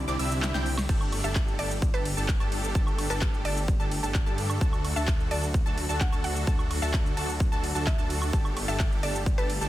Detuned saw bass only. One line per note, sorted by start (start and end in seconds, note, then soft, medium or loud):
0.08 0.17 C2 loud
0.19 0.52 C2 medium
0.54 0.87 C2 medium
0.89 1.22 G1 loud
1.24 1.57 G1 loud
1.59 1.91 G1 loud
1.94 2.15 G1 loud
2.17 2.38 G1 loud
2.40 2.73 G1 loud
2.75 3.08 G1 medium
3.10 3.43 G1 loud
3.45 3.78 G1 loud
3.80 4.01 G1 loud
4.03 4.24 G1 loud
4.26 4.59 G2 loud
4.61 4.94 D2 loud
4.96 5.29 D2 loud
5.31 5.64 D2 loud
5.66 5.87 D2 loud
5.89 6.10 D2 loud
6.12 6.45 D2 loud
6.47 6.80 D2 loud
6.82 7.15 D2 loud
7.17 7.50 D2 loud
7.52 7.73 D2 loud
7.75 7.96 D2 loud
7.98 8.31 D2 loud
8.33 8.66 G1 loud
8.68 9.01 G1 loud
9.03 9.36 G1 loud
9.38 9.59 G1 loud
9.61 9.69 G1 loud